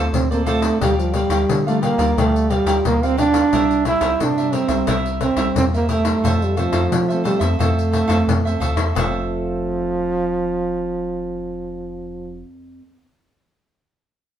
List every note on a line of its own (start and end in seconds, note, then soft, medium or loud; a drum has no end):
0.00 0.10 D3 medium
0.00 0.24 A3 medium
0.00 0.24 C4 soft
0.00 0.24 F4 medium
0.13 0.71 D2 medium
0.13 0.78 A2 medium
0.13 0.29 C4 medium
0.13 pandeiro medium
0.31 0.77 A3 medium
0.31 0.47 A#3 medium
0.31 0.77 C4 medium
0.31 0.77 F4 medium
0.31 0.46 A4 soft
0.31 0.46 C5 soft
0.31 0.46 D5 soft
0.31 pandeiro soft
0.45 0.80 A3 medium
0.45 0.62 F4 medium
0.45 0.63 A4 medium
0.45 0.62 C5 medium
0.45 0.61 D5 medium
0.45 pandeiro medium
0.62 0.80 A4 soft
0.62 0.79 C5 soft
0.62 0.79 D5 soft
0.62 pandeiro medium
0.81 1.25 D2 loud
0.81 1.46 D3 soft
0.81 0.97 G3 medium
0.81 1.10 G3 soft
0.81 1.10 A#3 soft
0.81 1.10 F4 medium
0.81 1.13 G4 medium
0.81 1.14 A#4 medium
0.81 1.15 D5 medium
0.81 1.15 F5 medium
0.81 pandeiro medium
0.98 1.16 F3 medium
0.98 pandeiro soft
1.14 1.66 G3 medium
1.14 1.60 G3 soft
1.14 1.61 A#3 soft
1.14 1.61 F4 medium
1.14 1.29 G4 soft
1.14 1.30 A#4 medium
1.14 1.30 D5 medium
1.14 1.30 F5 medium
1.14 pandeiro medium
1.30 1.45 D2 medium
1.30 1.40 G4 medium
1.30 1.40 A#4 medium
1.30 1.41 D5 medium
1.30 1.41 F5 medium
1.30 pandeiro medium
1.49 1.93 D3 medium
1.49 2.14 D3 medium
1.49 pandeiro medium
1.67 1.95 G3 medium
1.67 1.82 A3 medium
1.67 1.95 A#3 medium
1.67 1.96 F4 medium
1.67 1.82 A#4 soft
1.67 1.82 D5 soft
1.67 1.82 F5 soft
1.67 pandeiro soft
1.82 2.20 A#3 medium
1.82 1.98 G4 medium
1.82 1.99 A#4 medium
1.82 1.98 D5 soft
1.82 1.97 F5 medium
1.82 pandeiro medium
1.97 2.14 D2 loud
1.97 2.10 G3 medium
1.97 2.10 A#3 medium
1.97 2.11 F4 medium
1.97 2.16 A#4 soft
1.97 2.15 D5 medium
1.97 2.15 F5 medium
1.97 pandeiro medium
2.17 2.60 D2 loud
2.17 2.82 D3 medium
2.17 2.63 G3 medium
2.17 2.53 A3 loud
2.17 2.48 G4 medium
2.17 2.50 D5 medium
2.17 2.51 F5 medium
2.17 pandeiro medium
2.36 pandeiro soft
2.50 2.85 G3 medium
2.50 2.65 G4 soft
2.50 2.66 A#4 soft
2.50 2.66 D5 medium
2.50 2.66 F5 medium
2.50 pandeiro medium
2.65 2.81 D2 medium
2.65 2.95 G3 medium
2.65 2.95 A#3 medium
2.65 2.96 F4 medium
2.65 2.76 G4 medium
2.65 2.76 A#4 medium
2.65 2.76 D5 medium
2.65 2.77 F5 medium
2.65 pandeiro medium
2.85 3.43 D2 medium
2.85 3.50 D3 medium
2.85 3.06 A#3 medium
2.85 pandeiro medium
3.03 3.48 G3 medium
3.03 3.48 A#3 medium
3.03 3.18 C4 medium
3.03 3.48 F4 medium
3.03 3.17 A#4 soft
3.03 3.17 D5 soft
3.03 3.18 F5 medium
3.03 pandeiro soft
3.17 3.82 D4 loud
3.17 3.34 G4 medium
3.17 3.34 A#4 medium
3.17 3.33 D5 medium
3.17 3.32 F5 medium
3.17 pandeiro medium
3.33 3.51 A#4 soft
3.33 3.51 D5 soft
3.33 3.50 F5 soft
3.33 pandeiro medium
3.53 3.96 C2 loud
3.53 4.17 C3 medium
3.53 3.81 G3 soft
3.53 3.81 A#3 medium
3.53 3.84 E4 medium
3.53 3.82 E4 medium
3.53 3.85 A#4 medium
3.53 3.86 C5 medium
3.53 3.86 E5 medium
3.53 pandeiro medium
3.71 pandeiro soft
3.85 4.31 G3 medium
3.85 4.32 A#3 medium
3.85 3.99 E4 soft
3.85 4.32 E4 medium
3.85 4.24 E4 loud
3.85 4.00 A#4 soft
3.85 4.01 C5 medium
3.85 4.01 E5 medium
3.85 pandeiro medium
4.00 4.17 C2 medium
4.00 4.11 E4 medium
4.00 4.11 A#4 medium
4.00 4.12 C5 medium
4.00 4.12 E5 medium
4.00 pandeiro medium
4.20 4.85 G2 medium
4.20 4.64 C3 medium
4.20 4.56 D4 loud
4.20 pandeiro medium
4.38 4.67 G3 medium
4.38 4.67 A#3 medium
4.38 4.67 E4 medium
4.38 4.52 A#4 soft
4.38 4.53 C5 soft
4.38 4.53 E5 soft
4.38 pandeiro soft
4.52 4.95 C4 medium
4.52 4.69 E4 soft
4.52 4.69 A#4 soft
4.52 4.68 C5 soft
4.52 4.67 E5 medium
4.52 pandeiro medium
4.68 4.84 C2 loud
4.68 4.82 G3 medium
4.68 4.82 A#3 medium
4.68 4.82 E4 medium
4.68 4.86 A#4 medium
4.68 4.86 C5 medium
4.68 4.85 E5 medium
4.68 pandeiro medium
4.87 5.31 C2 loud
4.87 5.53 C3 medium
4.87 5.20 G3 soft
4.87 5.21 A#3 medium
4.87 5.19 E4 medium
4.87 5.21 E4 medium
4.87 5.20 A#4 medium
4.87 5.21 C5 medium
4.87 5.21 E5 medium
4.87 pandeiro medium
5.06 pandeiro soft
5.21 5.54 C4 medium
5.21 5.35 E4 soft
5.21 5.36 A#4 soft
5.21 5.36 C5 soft
5.21 5.36 E5 medium
5.21 pandeiro medium
5.36 5.52 C2 medium
5.36 5.67 G3 medium
5.36 5.67 A#3 medium
5.36 5.47 E4 medium
5.36 5.67 E4 medium
5.36 5.47 A#4 medium
5.36 5.47 C5 medium
5.36 5.47 E5 medium
5.36 pandeiro medium
5.56 6.14 E2 medium
5.56 6.21 G2 medium
5.56 5.65 C4 medium
5.56 pandeiro medium
5.74 6.20 G3 medium
5.74 5.91 A#3 medium
5.74 6.20 A#3 medium
5.74 6.20 E4 medium
5.74 5.89 A#4 soft
5.74 5.89 C5 soft
5.74 5.89 E5 medium
5.74 pandeiro soft
5.89 6.44 A3 medium
5.89 6.05 E4 medium
5.89 6.06 A#4 medium
5.89 6.04 C5 medium
5.89 6.04 E5 medium
5.89 pandeiro medium
6.05 6.22 A#4 soft
6.05 6.22 C5 soft
6.05 6.21 E5 soft
6.05 pandeiro medium
6.24 6.67 F2 loud
6.24 6.89 F2 soft
6.24 6.44 E3 medium
6.24 6.45 A3 soft
6.24 6.45 C4 soft
6.24 6.55 F4 medium
6.24 6.56 A4 medium
6.24 6.57 C5 medium
6.24 6.57 E5 medium
6.24 pandeiro medium
6.42 6.57 G3 medium
6.42 pandeiro soft
6.57 7.21 F3 medium
6.57 7.03 A3 soft
6.57 7.04 C4 medium
6.57 6.71 F4 soft
6.57 6.72 A4 soft
6.57 6.72 C5 medium
6.57 6.73 E5 medium
6.57 pandeiro medium
6.72 6.88 F2 medium
6.72 6.83 F4 medium
6.72 6.83 A4 medium
6.72 6.83 C5 medium
6.72 6.83 E5 medium
6.72 pandeiro medium
6.92 7.57 C3 soft
6.92 7.35 F3 loud
6.92 pandeiro medium
7.08 7.38 E3 medium
7.08 7.39 A3 medium
7.08 7.39 C4 medium
7.08 7.23 A4 soft
7.08 7.24 C5 soft
7.08 7.24 E5 soft
7.08 pandeiro soft
7.24 7.41 G3 medium
7.24 7.40 F4 soft
7.24 7.41 A4 soft
7.24 7.40 C5 soft
7.24 7.38 E5 soft
7.24 pandeiro medium
7.39 7.56 F2 loud
7.39 7.54 E3 medium
7.39 7.54 A3 medium
7.39 7.54 C4 medium
7.39 7.58 A4 soft
7.39 7.58 C5 medium
7.39 7.57 E5 medium
7.39 pandeiro medium
7.59 8.03 F2 loud
7.59 8.25 F2 medium
7.59 8.06 A3 medium
7.59 8.59 A3 medium
7.59 8.06 C4 medium
7.59 7.90 F4 medium
7.59 7.91 A4 medium
7.59 7.92 C5 medium
7.59 7.93 E5 medium
7.59 pandeiro medium
7.79 pandeiro soft
7.92 8.06 F4 soft
7.92 8.07 A4 soft
7.92 8.07 C5 soft
7.92 8.08 E5 soft
7.92 pandeiro medium
8.08 8.24 F2 medium
8.08 8.39 E3 medium
8.08 8.39 A3 medium
8.08 8.39 C4 medium
8.08 8.18 F4 medium
8.08 8.18 A4 medium
8.08 8.19 C5 medium
8.08 8.19 E5 medium
8.08 pandeiro medium
8.28 8.57 F2 medium
8.28 8.93 C3 medium
8.28 pandeiro medium
8.45 8.91 E3 medium
8.45 8.91 A3 medium
8.45 8.92 C4 medium
8.45 8.60 A4 soft
8.45 8.61 C5 soft
8.45 8.61 E5 soft
8.45 pandeiro soft
8.60 8.76 D2 medium
8.60 8.77 F4 medium
8.60 8.77 A4 medium
8.60 8.76 C5 medium
8.60 8.75 E5 medium
8.60 pandeiro medium
8.76 8.93 E2 medium
8.76 8.94 A4 soft
8.76 8.94 C5 soft
8.76 8.93 E5 soft
8.76 pandeiro medium
8.92 12.44 F1 medium
8.92 12.78 F2 medium
8.92 12.81 F4 medium
8.96 12.45 F3 medium
8.96 12.83 A4 medium
8.96 12.84 C5 medium
8.96 12.85 E5 medium
8.96 pandeiro medium
9.03 12.89 A3 medium
9.07 12.93 C4 medium